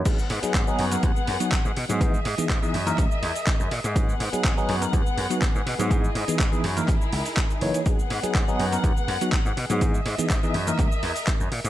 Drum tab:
CC |x---------------|----------------|----------------|----------------|
HH |x-oxx-oxx-oxx-ox|x-oxx-oxx-oox-ox|x-oxx-oxx-oxx-ox|x-oxx-oxx-oox-ox|
SH |xx-xxx-xxx-xxx-x|xx-xxx-xxx-xxx-x|xx-xxx-xxx-xxx-x|xx-xxx-xxx-xxx-x|
CP |----x-------x---|----x---x---x---|----x-------x---|----x---x---x---|
BD |o---o---o---o---|o---o---o---o---|o---o---o---o---|o---o---o---o---|

CC |----------------|----------------|
HH |x-oxx-oxx-oxx-ox|x-oxx-oxx-oox-ox|
SH |xx-xxx-xxx-xxx-x|xx-xxx-xxx-xxx-x|
CP |----x-------x---|----x---x---x---|
BD |o---o---o---o---|o---o---o---o---|